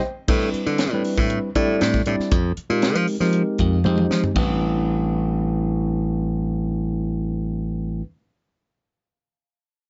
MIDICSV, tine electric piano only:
0, 0, Header, 1, 2, 480
1, 0, Start_track
1, 0, Key_signature, 0, "minor"
1, 0, Tempo, 510204
1, 265, Time_signature, 4, 2, 24, 8
1, 9306, End_track
2, 0, Start_track
2, 0, Title_t, "Tine electric piano"
2, 0, Program_c, 0, 4
2, 262, Note_on_c, 0, 55, 76
2, 266, Note_on_c, 0, 60, 72
2, 267, Note_on_c, 0, 62, 73
2, 267, Note_on_c, 0, 64, 71
2, 275, Note_on_c, 0, 71, 86
2, 791, Note_off_c, 0, 55, 0
2, 793, Note_off_c, 0, 60, 0
2, 794, Note_off_c, 0, 62, 0
2, 794, Note_off_c, 0, 64, 0
2, 798, Note_off_c, 0, 71, 0
2, 876, Note_on_c, 0, 60, 68
2, 877, Note_on_c, 0, 55, 80
2, 879, Note_on_c, 0, 64, 74
2, 882, Note_on_c, 0, 62, 72
2, 887, Note_on_c, 0, 71, 89
2, 1397, Note_off_c, 0, 60, 0
2, 1398, Note_off_c, 0, 55, 0
2, 1399, Note_off_c, 0, 64, 0
2, 1400, Note_off_c, 0, 62, 0
2, 1403, Note_off_c, 0, 71, 0
2, 1464, Note_on_c, 0, 62, 86
2, 1466, Note_on_c, 0, 55, 90
2, 1466, Note_on_c, 0, 74, 101
2, 1467, Note_on_c, 0, 60, 78
2, 1467, Note_on_c, 0, 64, 82
2, 1887, Note_off_c, 0, 62, 0
2, 1888, Note_off_c, 0, 55, 0
2, 1888, Note_off_c, 0, 74, 0
2, 1889, Note_off_c, 0, 60, 0
2, 1889, Note_off_c, 0, 64, 0
2, 1946, Note_on_c, 0, 55, 80
2, 1946, Note_on_c, 0, 60, 68
2, 1950, Note_on_c, 0, 74, 86
2, 1951, Note_on_c, 0, 62, 69
2, 1954, Note_on_c, 0, 64, 75
2, 2185, Note_off_c, 0, 55, 0
2, 2185, Note_off_c, 0, 60, 0
2, 2187, Note_off_c, 0, 62, 0
2, 2187, Note_off_c, 0, 74, 0
2, 2189, Note_off_c, 0, 64, 0
2, 2537, Note_on_c, 0, 56, 70
2, 2538, Note_on_c, 0, 60, 57
2, 2541, Note_on_c, 0, 63, 56
2, 2548, Note_on_c, 0, 70, 71
2, 2550, Note_on_c, 0, 67, 59
2, 2962, Note_off_c, 0, 56, 0
2, 2962, Note_off_c, 0, 60, 0
2, 2964, Note_off_c, 0, 63, 0
2, 2967, Note_off_c, 0, 70, 0
2, 2968, Note_off_c, 0, 67, 0
2, 3019, Note_on_c, 0, 56, 70
2, 3023, Note_on_c, 0, 63, 59
2, 3027, Note_on_c, 0, 70, 75
2, 3029, Note_on_c, 0, 60, 65
2, 3029, Note_on_c, 0, 67, 63
2, 3549, Note_off_c, 0, 56, 0
2, 3550, Note_off_c, 0, 63, 0
2, 3553, Note_off_c, 0, 60, 0
2, 3553, Note_off_c, 0, 67, 0
2, 3553, Note_off_c, 0, 70, 0
2, 3620, Note_on_c, 0, 72, 91
2, 3622, Note_on_c, 0, 56, 78
2, 3623, Note_on_c, 0, 60, 78
2, 3625, Note_on_c, 0, 63, 70
2, 3627, Note_on_c, 0, 67, 72
2, 4046, Note_off_c, 0, 56, 0
2, 4046, Note_off_c, 0, 72, 0
2, 4047, Note_off_c, 0, 60, 0
2, 4048, Note_off_c, 0, 63, 0
2, 4049, Note_off_c, 0, 67, 0
2, 4083, Note_on_c, 0, 55, 65
2, 4090, Note_on_c, 0, 60, 61
2, 4100, Note_on_c, 0, 62, 60
2, 4112, Note_on_c, 0, 64, 59
2, 4124, Note_on_c, 0, 71, 73
2, 7523, Note_off_c, 0, 55, 0
2, 7530, Note_off_c, 0, 60, 0
2, 7540, Note_off_c, 0, 62, 0
2, 7552, Note_off_c, 0, 64, 0
2, 7564, Note_off_c, 0, 71, 0
2, 9306, End_track
0, 0, End_of_file